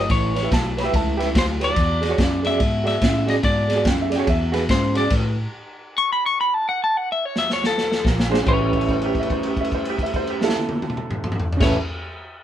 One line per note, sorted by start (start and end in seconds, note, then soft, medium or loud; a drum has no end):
0.00 0.11 D#5 medium
0.09 0.50 A1 medium
0.09 0.33 A2 medium
0.09 0.33 E3 medium
0.09 0.49 C#5 medium
0.09 kick medium
0.09 snare soft
0.09 ride medium
0.35 0.50 A2 medium
0.35 0.50 E3 medium
0.35 0.39 B4 medium
0.35 0.40 C#5 medium
0.35 snare soft
0.35 ride medium
0.43 0.51 G4 medium
0.43 0.51 B4 medium
0.43 0.52 E5 medium
0.51 0.92 B1 medium
0.51 0.75 A2 medium
0.51 0.75 F#3 medium
0.51 0.78 A5 medium
0.51 kick medium
0.51 snare medium
0.51 ride medium
0.77 0.91 A2 medium
0.77 0.92 F#3 medium
0.77 0.81 B4 medium
0.77 0.82 C#5 medium
0.77 0.94 B5 medium
0.77 snare soft
0.77 ride medium
0.83 0.92 G4 medium
0.83 0.93 B4 medium
0.83 0.93 E5 medium
0.93 1.34 C#2 medium
0.93 1.17 A2 medium
0.93 1.17 E3 medium
0.93 1.26 E5 medium
0.93 1.28 A5 medium
0.93 kick medium
0.93 snare soft
0.93 ride medium
1.17 1.33 A2 medium
1.17 1.34 E3 medium
1.17 1.26 G4 medium
1.17 1.27 B4 medium
1.17 1.27 E5 medium
1.17 snare soft
1.17 ride medium
1.35 1.76 D2 medium
1.35 1.59 A2 medium
1.35 1.59 F#3 medium
1.35 1.45 C5 medium
1.35 kick medium
1.35 snare loud
1.35 ride medium
1.60 1.75 A2 medium
1.60 1.75 F#3 medium
1.60 1.68 G4 medium
1.60 1.69 B4 medium
1.60 1.69 C#5 medium
1.60 snare soft
1.60 ride medium
1.64 2.42 D5 medium
1.76 2.00 E2 medium
1.76 2.17 E2 medium
1.76 2.00 B2 medium
1.76 kick medium
1.76 snare soft
1.76 ride medium
2.01 2.17 E2 medium
2.01 2.17 B2 medium
2.01 2.06 G#4 medium
2.01 2.07 D5 medium
2.01 snare soft
2.01 ride medium
2.09 2.18 F#4 medium
2.09 2.18 G#4 medium
2.09 2.19 C#5 medium
2.18 2.42 E2 medium
2.18 2.59 F#2 medium
2.18 2.42 C#3 medium
2.18 kick medium
2.18 snare loud
2.18 ride medium
2.43 2.58 E2 medium
2.43 2.59 C#3 medium
2.43 2.48 G#4 medium
2.43 2.49 D5 medium
2.43 2.86 E5 loud
2.43 snare soft
2.43 ride medium
2.50 2.59 F#4 medium
2.50 2.59 G#4 medium
2.50 2.60 D5 medium
2.60 2.84 E2 medium
2.60 3.01 G#2 medium
2.60 2.84 B2 medium
2.60 kick medium
2.60 snare soft
2.60 ride medium
2.84 3.01 E2 medium
2.84 3.01 B2 medium
2.84 2.93 F#4 medium
2.84 2.94 G#4 medium
2.84 2.94 D5 medium
2.84 3.30 E5 medium
2.84 snare soft
2.84 ride medium
3.02 3.26 E2 medium
3.02 3.43 A2 medium
3.02 3.26 C#3 medium
3.02 kick medium
3.02 snare loud
3.02 ride medium
3.26 3.42 E2 medium
3.26 3.42 C#3 medium
3.26 3.35 F#4 medium
3.26 3.36 G#4 medium
3.26 3.36 D5 medium
3.26 3.35 D#5 medium
3.26 snare soft
3.26 ride medium
3.43 3.68 E2 medium
3.43 3.84 G#2 medium
3.43 3.68 B2 medium
3.43 3.83 D5 medium
3.43 kick medium
3.43 snare soft
3.43 ride medium
3.68 3.84 E2 medium
3.68 3.84 B2 medium
3.68 3.73 G#4 medium
3.68 3.74 D5 medium
3.68 snare soft
3.68 ride medium
3.76 3.85 F#4 medium
3.76 3.85 G#4 medium
3.76 3.86 D5 medium
3.85 4.09 E2 medium
3.85 4.26 F#2 medium
3.85 4.10 C#3 medium
3.85 4.00 G5 medium
3.85 kick medium
3.85 snare loud
3.85 ride medium
4.02 4.14 E5 medium
4.10 4.26 E2 medium
4.10 4.26 C#3 medium
4.10 4.15 G#4 medium
4.10 4.16 D5 medium
4.10 snare soft
4.10 ride medium
4.16 4.27 F#4 medium
4.16 4.27 G#4 medium
4.16 4.28 C#5 medium
4.16 4.28 G5 medium
4.27 4.51 E2 medium
4.27 4.68 E2 medium
4.27 4.52 B2 medium
4.27 4.62 E5 medium
4.27 kick medium
4.27 snare soft
4.27 ride medium
4.52 4.68 E2 medium
4.52 4.68 B2 medium
4.52 4.61 F#4 medium
4.52 4.61 G#4 medium
4.52 4.62 B4 medium
4.52 snare soft
4.52 ride medium
4.69 4.93 E2 medium
4.69 5.10 G#2 medium
4.69 4.93 C#3 medium
4.69 4.97 C5 medium
4.69 kick medium
4.69 snare loud
4.69 ride medium
4.94 5.10 E2 medium
4.94 5.10 C#3 medium
4.94 5.03 F#4 medium
4.94 5.03 G#4 medium
4.94 5.04 D5 medium
4.94 5.13 D5 medium
4.94 snare soft
4.94 ride medium
5.10 5.35 A2 medium
5.10 5.46 A2 medium
5.10 5.35 E3 medium
5.10 kick medium
5.10 snare soft
5.10 crash medium
5.10 ride medium
5.98 6.10 C#6 medium
6.13 6.24 B5 medium
6.26 6.38 C#6 medium
6.41 6.54 B5 medium
6.54 6.66 A5 medium
6.69 6.80 F#5 medium
6.84 6.97 A5 medium
6.97 7.08 F#5 medium
7.12 7.25 E5 medium
7.25 7.37 C#5 medium
7.36 7.50 E5 medium
7.36 snare medium
7.50 7.64 C#5 medium
7.50 snare medium
7.64 8.05 A4 medium
7.64 snare medium
7.78 snare medium
7.92 snare medium
8.04 8.45 A#1 medium
8.04 8.28 A#2 medium
8.04 8.28 F3 medium
8.04 8.38 F4 medium
8.04 8.39 A#4 medium
8.04 kick medium
8.04 snare medium
8.20 snare medium
8.30 8.45 A#2 medium
8.30 8.45 G3 medium
8.30 8.38 D4 medium
8.30 8.38 G#4 medium
8.30 8.39 C5 medium
8.30 snare medium
8.43 11.50 A1 medium
8.43 11.58 A2 medium
8.43 11.60 G3 medium
8.43 11.48 C#4 medium
8.43 11.50 G4 medium
8.43 kick medium
8.43 crash medium
8.48 11.61 C#4 medium
8.48 11.62 E4 medium
8.48 11.52 B4 medium
8.48 11.51 C#5 medium
8.73 8.89 E5 medium
8.73 kick medium
8.73 crash soft
8.81 crash soft
8.89 9.03 C5 medium
8.89 kick medium
8.89 crash soft
9.02 9.17 G4 medium
9.02 crash soft
9.15 kick medium
9.15 crash soft
9.20 9.31 E5 medium
9.20 crash soft
9.30 9.45 C5 medium
9.30 kick medium
9.30 crash soft
9.43 9.59 G4 medium
9.43 crash soft
9.57 kick medium
9.57 crash soft
9.61 9.73 E5 medium
9.61 crash soft
9.72 9.87 C5 medium
9.72 kick medium
9.72 crash soft
9.85 crash soft
9.90 10.01 G4 medium
9.98 kick medium
9.98 crash soft
10.03 10.15 E5 medium
10.03 crash soft
10.14 10.28 C5 medium
10.14 kick medium
10.14 crash soft
10.27 10.42 G4 medium
10.27 crash soft
10.41 11.51 E4 medium
10.41 11.52 A4 medium
10.41 snare medium
10.49 snare medium
10.55 high tom medium
10.69 high tom medium
10.82 high tom medium
10.90 mid tom medium
10.97 mid tom medium
11.11 mid tom medium
11.24 mid tom medium
11.32 mid tom medium
11.40 floor tom medium
11.53 floor tom loud
11.57 11.76 A1 medium
11.57 11.76 A2 medium
11.57 11.76 G3 medium
11.57 11.74 C#4 medium
11.57 11.75 E4 medium
11.57 11.75 G4 medium
11.57 kick loud
11.57 crash loud
11.61 11.77 C#4 medium
11.61 11.78 E4 loud
11.61 11.77 A4 medium
11.61 11.77 B4 medium
11.61 11.76 C#5 medium
11.61 snare medium